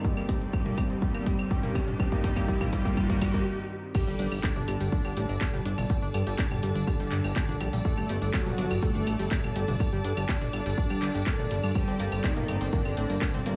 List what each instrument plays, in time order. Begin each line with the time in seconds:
Already playing: analog synth pad G2 D#3 C4, string section G3 C4 A4 D5, riser
0.04 digital synth lead G3, supersaw synth G3 G4, synth arpeggio sound C4, analog synth pad D#4, kick, closed hi-hat
0.17 synth arpeggio sound A#3, claves
0.29 synth arpeggio sound C4, kick, open hi-hat
0.41 synth arpeggio sound C4, closed hi-hat
0.53 digital synth lead G3, supersaw synth G3 G4, synth arpeggio sound C4, kick, closed hi-hat, claves
0.66 synth arpeggio sound A#3, closed hi-hat, mid tom
0.78 synth arpeggio sound C4, kick, open hi-hat, claves
0.90 synth arpeggio sound C4, closed hi-hat
1.02 supersaw synth G3 G4, digital synth lead G3, synth arpeggio sound C4, kick, closed hi-hat
1.15 synth arpeggio sound A#3, closed hi-hat, claves
1.26 synth arpeggio sound C4, kick, open hi-hat
1.39 synth arpeggio sound C4, closed hi-hat, claves
1.51 supersaw synth G3 G4, digital synth lead G3, synth arpeggio sound C4, kick, closed hi-hat
1.63 synth arpeggio sound A#3, closed hi-hat, mid tom
1.75 synth arpeggio sound C4, kick, open hi-hat, claves
1.88 synth arpeggio sound C4, closed hi-hat, mid tom
2.00 supersaw synth G3 G4, digital synth lead G3, synth arpeggio sound C4, kick, closed hi-hat, claves
2.12 synth arpeggio sound A#3, kick, closed hi-hat
2.24 digital synth lead G3, supersaw synth G3 G4, synth arpeggio sound C4, kick, open hi-hat
2.36 synth arpeggio sound A#3, kick, closed hi-hat, claves
2.48 supersaw synth G3 G4, digital synth lead G3, synth arpeggio sound C4, kick, closed hi-hat
2.61 synth arpeggio sound A#3, kick, closed hi-hat, mid tom, claves
2.73 digital synth lead G3, supersaw synth G3 G4, synth arpeggio sound C4, kick, open hi-hat
2.85 synth arpeggio sound A#3, kick, closed hi-hat
2.97 digital synth lead G3, supersaw synth G3 G4, synth arpeggio sound C4, kick, closed hi-hat, claves
3.10 synth arpeggio sound A#3, kick, closed hi-hat
3.21 digital synth lead G3, supersaw synth G3 G4, synth arpeggio sound C4, kick, open hi-hat, claves
3.34 synth arpeggio sound A#3, kick, closed hi-hat
3.94 analog synth pad D3 A4 D5, synth arpeggio sound G3 G4, supersaw synth G3 G4, digital synth lead G3, string section A4, kick, closed hi-hat, tambourine, crash, impact, claves
4.07 analog synth bass G1, synth arpeggio sound G3 G4, closed hi-hat, tambourine
4.18 analog synth bass G1, synth arpeggio sound D4 D5, string section D5, open hi-hat
4.32 analog synth bass G1, synth arpeggio sound G3 G4, closed hi-hat, tambourine, claves
4.44 supersaw synth D3 D4, digital synth lead D3, synth arpeggio sound G3 G4, kick, clap, closed hi-hat, tambourine
4.56 analog synth bass G1, synth arpeggio sound D4 D5, closed hi-hat, mid tom, tambourine
4.61 string section A5
4.68 analog synth bass G1, synth arpeggio sound G3 G4, open hi-hat, claves
4.80 analog synth bass G1, synth arpeggio sound G3 G4, closed hi-hat, tambourine
4.92 supersaw synth D3 D4, digital synth lead D3, synth arpeggio sound D4 D5, kick, closed hi-hat, tambourine
5.05 analog synth bass G1, synth arpeggio sound G3 G4, closed hi-hat, tambourine, claves
5.17 analog synth bass A1, synth arpeggio sound G3 G4, open hi-hat
5.29 analog synth bass G1, synth arpeggio sound D4 D5, closed hi-hat, tambourine
5.41 synth arpeggio sound G3 G4, kick, clap, closed hi-hat, tambourine, claves
5.54 analog synth bass G1, synth arpeggio sound G3 G4, closed hi-hat, mid tom, tambourine
5.65 analog synth bass G1, synth arpeggio sound D4 D5, open hi-hat
5.78 analog synth bass G1, synth arpeggio sound G3 G4, closed hi-hat, mid tom, tambourine, claves
5.89 synth arpeggio sound G3 G4, kick, closed hi-hat, tambourine
6.02 analog synth bass G1, synth arpeggio sound D4 D5, closed hi-hat, tambourine
6.14 analog synth bass G2, synth arpeggio sound G3 G4, open hi-hat, claves
6.27 analog synth bass G1, synth arpeggio sound G3 G4, closed hi-hat, tambourine
6.38 digital synth lead D3, supersaw synth D3 D4, synth arpeggio sound D4 D5, kick, clap, closed hi-hat, tambourine
6.51 analog synth bass G1, synth arpeggio sound G3 G4, closed hi-hat, mid tom, tambourine, claves
6.63 analog synth bass G1, synth arpeggio sound G3 G4, open hi-hat
6.75 analog synth bass G1, synth arpeggio sound D4 D5, closed hi-hat, tambourine
6.87 synth arpeggio sound G3 G4, kick, closed hi-hat, tambourine, claves
7.00 analog synth bass G1, synth arpeggio sound G3 G4, closed hi-hat, tambourine
7.12 analog synth bass G1, synth arpeggio sound D4 D5, clap, open hi-hat
7.24 analog synth bass G1, synth arpeggio sound G3 G4, closed hi-hat, tambourine, claves
7.36 synth arpeggio sound G3 G4, kick, clap, closed hi-hat, tambourine
7.49 analog synth bass A#1, synth arpeggio sound D4 D5, closed hi-hat, mid tom, tambourine
7.61 analog synth bass A#1, synth arpeggio sound G3 G4, open hi-hat, claves
7.73 analog synth bass A#1, synth arpeggio sound G3 G4, closed hi-hat, tambourine
7.85 supersaw synth A3 A4, digital synth lead A3, synth arpeggio sound D4 D5, kick, closed hi-hat, tambourine
7.97 analog synth bass G1, synth arpeggio sound G3 G4, closed hi-hat, tambourine, claves
8.09 analog synth bass G1, synth arpeggio sound G3 G4, open hi-hat
8.17 string section A5
8.22 analog synth bass G1, synth arpeggio sound D4 D5, closed hi-hat, tambourine
8.34 supersaw synth F#3 F#4, digital synth lead F#3, synth arpeggio sound G3 G4, kick, clap, closed hi-hat, tambourine, claves
8.46 analog synth bass G1, synth arpeggio sound G3 G4, closed hi-hat, mid tom, tambourine
8.58 analog synth bass G1, synth arpeggio sound D4 D5, open hi-hat
8.71 analog synth bass G1, synth arpeggio sound G3 G4, closed hi-hat, tambourine, claves
8.82 synth arpeggio sound G3 G4, digital synth lead A3, supersaw synth A3 A4, kick, closed hi-hat, tambourine
8.94 analog synth bass G1, synth arpeggio sound D4 D5, closed hi-hat, tambourine
9.07 analog synth bass A1, synth arpeggio sound G3 G4, open hi-hat, claves
9.19 analog synth bass G1, synth arpeggio sound G3 G4, closed hi-hat, tambourine
9.31 synth arpeggio sound D4 D5, kick, clap, closed hi-hat, tambourine
9.44 analog synth bass G1, synth arpeggio sound G3 G4, closed hi-hat, mid tom, tambourine, claves
9.56 analog synth bass G1, synth arpeggio sound G3 G4, open hi-hat
9.68 analog synth bass G1, synth arpeggio sound D4 D5, closed hi-hat, mid tom, tambourine
9.80 synth arpeggio sound G3 G4, kick, closed hi-hat, tambourine, claves
9.92 analog synth bass G1, synth arpeggio sound G3 G4, closed hi-hat, tambourine
10.04 analog synth bass G2, synth arpeggio sound D4 D5, open hi-hat
10.17 analog synth bass G1, synth arpeggio sound G3 G4, closed hi-hat, tambourine, claves
10.29 synth arpeggio sound G3 G4, supersaw synth D4 D5, digital synth lead D4, kick, clap, closed hi-hat, tambourine
10.41 analog synth bass G1, synth arpeggio sound D4 D5, closed hi-hat, mid tom, tambourine
10.53 analog synth bass G1, synth arpeggio sound G3 G4, open hi-hat, claves
10.66 analog synth bass G1, synth arpeggio sound G3 G4, closed hi-hat, tambourine
10.78 synth arpeggio sound D4 D5, kick, closed hi-hat, tambourine
10.90 analog synth bass G1, synth arpeggio sound G3 G4, closed hi-hat, tambourine, claves
11.02 analog synth bass G1, synth arpeggio sound D3 D4, clap, open hi-hat
11.15 analog synth bass G1, synth arpeggio sound G4 G5, closed hi-hat, tambourine
11.26 synth arpeggio sound A#4 A#5, kick, clap, closed hi-hat, tambourine, claves
11.38 analog synth bass G1, synth arpeggio sound A3 A4, closed hi-hat, mid tom, tambourine
11.51 analog synth bass G1, synth arpeggio sound G3 G4, open hi-hat
11.63 analog synth bass G2, synth arpeggio sound D4 D5, closed hi-hat, tambourine, claves
11.75 digital synth lead G3, supersaw synth G3 G4, analog synth pad C4, string section C4, synth arpeggio sound C4 C5, kick, closed hi-hat, tambourine, claves
11.88 analog synth bass G1, synth arpeggio sound C4 C5, closed hi-hat, tambourine
12.00 analog synth bass G1, synth arpeggio sound A#3 A#4, open hi-hat
12.12 analog synth bass G1, synth arpeggio sound C4 C5, closed hi-hat, tambourine, claves
12.24 supersaw synth D#3 D#4, digital synth lead D#3, synth arpeggio sound C4 C5, kick, clap, closed hi-hat, tambourine
12.36 analog synth bass G1, synth arpeggio sound A#3 A#4, closed hi-hat, mid tom, tambourine
12.48 analog synth bass G1, synth arpeggio sound C4 C5, open hi-hat, claves
12.61 analog synth bass G1, synth arpeggio sound C4 C5, closed hi-hat, tambourine
12.72 supersaw synth D3 D4, digital synth lead D3, synth arpeggio sound A#3 A#4, kick, closed hi-hat, tambourine
12.85 analog synth bass G1, synth arpeggio sound C4 C5, closed hi-hat, tambourine, claves
12.97 analog synth bass A1, synth arpeggio sound C4 C5, open hi-hat
13.10 analog synth bass G1, synth arpeggio sound A#3 A#4, closed hi-hat, tambourine
13.22 synth arpeggio sound C4 C5, kick, clap, closed hi-hat, tambourine, claves
13.33 analog synth bass G1, synth arpeggio sound C4 C5, closed hi-hat, mid tom, tambourine
13.46 analog synth bass G1, synth arpeggio sound A#3 A#4, open hi-hat